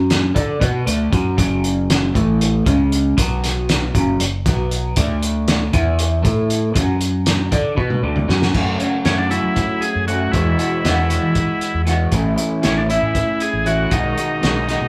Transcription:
Already playing: F#2 F#3 C#4 F#4
0.10 snare, closed hi-hat
0.34 D3 D4 A4 D5, kick, closed hi-hat
0.60 B2 B3 F#4 B4, kick, closed hi-hat
0.86 D2 D3 A3 D4, closed hi-hat
1.12 F#2 F#3 C#4 F#4, kick, closed hi-hat
1.37 F#1 F#2 C#3 F#3, kick, closed hi-hat
1.64 closed hi-hat
1.90 snare, closed hi-hat
2.14 A1 A2 E3 A3, kick, closed hi-hat
2.41 closed hi-hat
2.66 C#2 C#3 G#3 C#4, kick, closed hi-hat
2.92 closed hi-hat
3.17 B1 B2 F#3 B3, kick, closed hi-hat
3.44 snare, closed hi-hat
3.69 snare, closed hi-hat
3.95 F#1 F#2 C#3 F#3, kick, closed hi-hat
4.20 F#1 F#2 C#3, closed hi-hat
4.45 B1 B2 F#3 B3, kick, snare, closed hi-hat
4.71 closed hi-hat
4.96 D2 D3 A3 D4, kick, closed hi-hat
5.23 closed hi-hat
5.48 snare, closed hi-hat
5.73 E2 E3 B3 E4, kick, closed hi-hat
5.99 closed hi-hat
6.22 A2 A3 E4 A4, kick, closed hi-hat
6.50 closed hi-hat
6.74 F#2 F#3 C#4 F#4, kick, closed hi-hat
7.01 closed hi-hat
7.26 snare, closed hi-hat
7.51 D3 D4 A4 D5, kick, closed hi-hat
7.76 B2 B3 F#4 B4, kick
7.90 high tom
8.03 D2 D3 A3 D4
8.16 mid tom
8.28 F#2 F#3 C#4 F#4, snare
8.42 snare
8.54 F#2 C#3 F#3 A3 C#4 F#4, kick, crash
8.80 F#3 A3 C#4 F#4, closed hi-hat
9.04 F#2 C#3 F#3 A3 C#4 F#4, snare, closed hi-hat
9.18 D4
9.30 F#3 A3 C#4 E4 F#4, closed hi-hat
9.44 F#3
9.56 kick, snare, closed hi-hat
9.81 G#4, closed hi-hat
9.96 F#2
10.07 F#3 A3 C#4 F#4, closed hi-hat
10.32 E2 B2 E3 G#3 B3 E4 F#4, kick, closed hi-hat
10.58 E3 G#3 B3 F#4, closed hi-hat
10.84 E2 B2 E3 G#3 B3 F#4, snare, closed hi-hat
11.09 E3 G#3 B3 F#4, closed hi-hat
11.23 E3
11.35 kick, closed hi-hat
11.61 closed hi-hat
11.74 E2
11.85 E3 G#3 B3 F#4, snare, closed hi-hat
12.12 A1 A2 E3 A3 C#4 E4, kick, closed hi-hat
12.36 A3 C#4 E4, closed hi-hat
12.62 A1 A2 E3 A3 C#4 E4, snare, closed hi-hat
12.77 D4
12.89 A3 C#4 E4, closed hi-hat
13.02 A2
13.15 kick, closed hi-hat
13.40 G#4, closed hi-hat
13.53 A1
13.64 E3 A3 C#4 E4 F#4, closed hi-hat
13.90 B1 B2 D#3 G#3 D#4 F#4, kick, closed hi-hat
14.16 G#3 D#4 F#4, closed hi-hat
14.41 B1 B2 D#3 G#3 D#4 F#4, snare, closed hi-hat
14.67 G#3 D#4 F#4, snare, closed hi-hat
14.81 B2

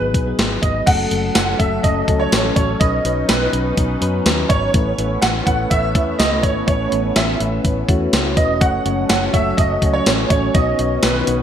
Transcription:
Already playing: G#1 F#3 B3 D#4 G#4 B4
0.14 B1, kick, closed hi-hat
0.26 F#3 B3 D#4 G#4
0.39 G#1, snare, closed hi-hat
0.62 G#1 D#5, kick, closed hi-hat
0.86 F#1 F#3 A3 C#4 A4 F#5, kick, closed hi-hat, crash
1.11 F#1 F#3 A3 C#4 A4, closed hi-hat
1.35 F#1 F#5, snare, closed hi-hat, tambourine
1.59 F#1 F#3 A3 C#4 A4 E5, kick, closed hi-hat
1.83 F#1 D#5, kick, closed hi-hat
2.08 C#2 F#3 A3 C#4 A4, kick, closed hi-hat
2.20 C#5
2.32 A1, snare, closed hi-hat, tambourine
2.44 F#3 A3 C#4 A4
2.56 A1 C#5, kick, closed hi-hat
2.80 B1 F#3 B3 C#4 D#4 B4 D#5, kick, closed hi-hat
3.05 B1 F#3 C#4 D#4 B4, closed hi-hat
3.28 B1 B4, snare, closed hi-hat, tambourine
3.53 B1 F#3 C#4 D#4 B4, closed hi-hat
3.77 B1, kick, closed hi-hat
4.01 F#2 F#3 C#4 D#4 B4, closed hi-hat
4.26 D#2, snare, closed hi-hat, tambourine
4.37 F#3 C#4 D#4 B4
4.49 G#1 C#5, kick, closed hi-hat
4.74 A1 A3 B3 C#4 E4 B4, kick, closed hi-hat
4.98 A1 A3 C#4 E4 B4, closed hi-hat
5.22 A1 F#5, snare, closed hi-hat, tambourine
5.46 A1 A3 C#4 E4 B4 F#5, kick, closed hi-hat
5.70 A1 E5, kick, closed hi-hat
5.95 E2 A3 C#4 E4 B4, kick, closed hi-hat
6.19 C#2 D#5, snare, closed hi-hat, tambourine
6.31 A3 C#4 E4 B4
6.43 G#1 C#5, kick, closed hi-hat
6.67 A1 A3 C#4 E4 B4 C#5, kick, closed hi-hat
6.91 A1 A3 C#4 E4 B4, closed hi-hat
7.16 A1 E5, snare, closed hi-hat, tambourine
7.40 A1 A3 C#4 E4 B4, closed hi-hat
7.64 A1, kick, closed hi-hat
7.88 E2 A3 C#4 E4 F#4, kick, closed hi-hat
8.13 C#2, snare, closed hi-hat, tambourine
8.24 A3 C#4 E4 B4
8.37 E1 D#5, kick, closed hi-hat
8.61 F#1 F#3 A3 C#4 F#4 A4 C#5 F#5, kick, closed hi-hat
8.85 F#1 A3 C#4 F#4 C#5, closed hi-hat
9.09 F#1 F#5, snare, closed hi-hat, tambourine
9.33 F#1 A3 C#4 F#4 C#5 E5, kick, closed hi-hat
9.57 F#1 D#5, kick, closed hi-hat
9.82 C#2 A3 C#4 F#4 C#5, kick, closed hi-hat
9.94 C#5
10.06 A1, snare, closed hi-hat, tambourine
10.18 A3 C#4 F#4 C#5
10.30 A1 C#5, kick, closed hi-hat
10.54 B1 D#3 B3 D#4 F#4 C#5 D#5, kick, closed hi-hat
10.79 B1 B3 D#4 F#4 C#5, closed hi-hat
11.02 B1 B4, snare, closed hi-hat, tambourine
11.27 B1 B3 D#4 F#4 C#5, closed hi-hat

